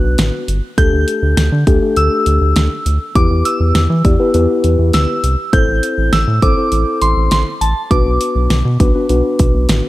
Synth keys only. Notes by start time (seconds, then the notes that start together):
Already playing: B3 D4 F#4 B4
0.78 A3 D4 G4 A4
1.67 A3 D4 G4 A4
1.82 A3 D4 G4 A4
3.16 B3 E4 G4 B4
4.05 B3 E4 G4 D5
4.20 B3 E4 G4 B4
4.34 B3 E4 G4 B4
5.53 C4 E4 A4 C5
6.42 C4 E4 A4 C5
6.57 C4 E4 A4 C5
7.91 B3 D4 F#4 B4
8.80 B3 D4 F#4 B4
8.95 B3 D4 F#4 B4
9.10 B3 D4 F#4 B4